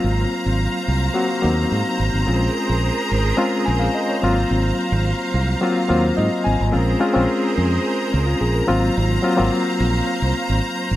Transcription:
Already playing: F#3 A#3 C4 F4 C5 F5 A#5
0.04 G#1
0.46 G#1
0.88 C2
1.14 F#3 A#3 C4 F#4
1.42 D#2 F#3 A#3 B3 D#4
1.50 C4
1.72 G#2
2.00 G#1
2.14 G#1
2.26 A#1 G#3 C4 C#4 F4 G#4 A#4
2.69 A#1
3.11 G#1
3.37 G#3 C4 C#4 F4
3.65 A#1 G#5
3.79 F5
3.95 D#5
4.09 C#5
4.22 G#1 F#3 A#3 C4 F4 F5
4.51 G#1
4.92 G#1
5.34 C2
5.61 F#3 A#3 C4 F4
5.88 D#2 F#3 A#3 C4 F4 C5
6.17 G#2 D#5
6.44 G#1 G#5
6.60 G#1
6.72 A#1 G#3 C4 C#4 F4 G#4 A#4 C5 A#5
7.00 G#3 C4 C#4 F4
7.13 A#1 G#3 C4 C#4 F4
7.58 F2
8.13 C#2 C#4
8.26 F4
8.41 A#1 G#4
8.55 A#4
8.67 G#1 F#3 A#3 C4 F4 C5 F5
8.97 G#1
9.22 F#3 A#3 C4 F4
9.37 G#1 F#3 A#3 C4 F4
9.80 A#1
10.22 C2
10.49 G#1
10.91 G#1

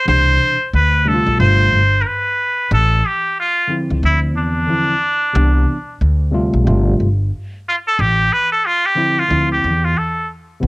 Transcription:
0.05 C2 B2 C3 E3 D4 C5
0.73 D2 B4
1.05 C3 G3 A3 D4 A4
1.14 F4
1.26 B1
1.37 G1 C3 G3 A3 F4 C5
1.72 G1
2.01 A#4
2.06 B4
2.71 A1 A4
3.06 G4
3.40 F4
3.68 D3 F3 C4 E4
3.90 C#2
4.03 D2 E4
4.36 E2 D4
4.67 D3 F3 C4 E4
5.33 C2 C3 E3 B3 D4
6.01 D2
6.31 C3 G3 A3 F4
6.54 B1
6.64 G1 C3 G3 A3 F4
7.00 G1
7.68 F4
7.88 A4
7.99 A1 G4
8.33 B4
8.52 A4
8.66 F4
8.86 G4
8.95 D3 F3 C4 E4
9.19 F4
9.28 D2 D3 F3 C4 E4
9.52 G4
9.64 E2
9.85 F4
9.98 A4
10.60 C2 C3 E3 B3 C#4

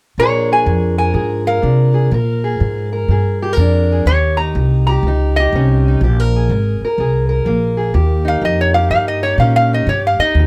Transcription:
0.18 A#2 F3 D4 G#4 C#5
0.22 A#4
0.52 G#4 G#5
0.66 F2 A#2
0.98 A#4 G#5
1.13 G#2 A#2 G#4
1.47 A#4 F5
1.61 A#2 C3 D4
1.94 G#4
2.12 A#2 A#4
2.44 G#4
2.60 G#2 A#2
2.93 A#4
3.08 G2 A#2 G#4
3.42 G4
3.53 A#4
3.57 F2 A#2 D4
3.92 G#4
4.06 D#2 D#3 G4 C#5
4.37 D#4 A#5
4.55 C2 D#3
4.87 G4 A#5
5.03 C#2 D#3
5.08 D#4
5.36 G4 D#5
5.53 C2 D#3 C#4
5.88 D#4
6.01 A#1 A#2 G4
6.20 A#4
6.36 G#4
6.49 G#1 A#2
6.81 A#4, muted upright bass stroke
6.98 C2 A#2 G#4
7.29 A#4
7.45 A#1 A#2 A#3
7.77 G#4
7.94 D#2 D#3 G4
8.25 D#4 F5
8.42 F2 D#3 D#5
8.61 C#5
8.74 G4 F5
8.90 G2 D#3 D#4 F5
9.08 D#5
9.23 G4 C#5
9.38 A#2 D#3 C#4 F5
9.56 F5
9.73 D#4 D#5
9.87 G2 D#3 G4 C#5
10.07 F5
10.19 D#4 D#5, muted upright bass stroke
10.35 D#2
10.39 D#3

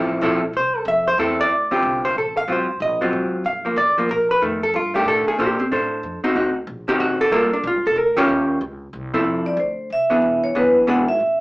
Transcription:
Already playing: A1 F3 C4 E4 A4
0.21 A#1 F3 C4 E4 A4
0.53 C2 C5
0.77 A4
0.85 F2 E5
1.08 C5
1.18 E2 C4 E4 A4
1.41 D5
1.50 D2
1.71 D3 C4 F4 G4
1.82 C2
2.05 C5
2.15 A1 A4
2.37 F5
2.48 G#1 F#3 C4 F4
2.52 C5
2.80 A#1 D#5
3.01 F#3 C4 F4
3.13 G#1
3.45 G1 F5
3.65 F3 A#3
3.76 A1 D5
3.98 F3 A#3
4.09 A#1 A#4
4.31 B4
4.42 F2 D#3 A3
4.63 A4
4.74 G2 F4
4.94 D#3 A3 D4 G4
5.06 A2 A4
5.27 G#4, muted upright bass stroke
5.38 A#2 A#3 D4 G4 A4 C5
5.60 C4
5.72 A2 D4 A4 C5
6.03 F2
6.24 C4 D#4 F#4, muted upright bass stroke
6.35 D2 D3 C4 D#4 F#4
6.67 A#1
6.88 D3 C4 D#4 F#4 G4
6.99 A1 F#4
7.21 A4
7.31 G1 G3 A#3 F4 A4 A#4
7.53 D4
7.64 A#1 F4
7.75 G1
7.86 F1 A4
7.96 D2 A#4
8.16 D#3 C#4 F4 G4 C#5
8.29 D#2
8.61 C#2
8.93 C2
9.14 F3 C4 E4 A4
9.24 F2
9.46 D5
9.57 D2 C5
9.90 C2 E5
10.10 E3 B3 D4 G#4
10.22 E1
10.43 C#5, muted upright bass stroke
10.55 F#1 E3 B3 D4 G#4 B4
10.87 G#1 E3 B3 D4 G#4 F#5
11.08 E5
11.20 A1

